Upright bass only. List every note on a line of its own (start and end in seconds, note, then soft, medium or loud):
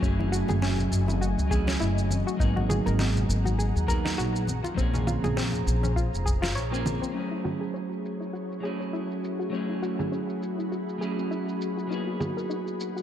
0.02 0.43 F#1 medium
0.49 0.87 F#1 loud
0.91 1.32 F#1 medium
1.38 1.76 C#2 medium
1.80 2.21 F#1 medium
2.40 2.80 G#1 loud
2.86 3.25 G#1 loud
3.29 3.70 G#1 loud
3.76 4.14 D#2 medium
4.18 4.59 A#1 medium
4.78 5.18 A#1 loud
5.24 5.62 A#1 loud
5.67 6.07 A#1 medium
6.13 6.56 F1 medium
6.56 6.96 A#1 medium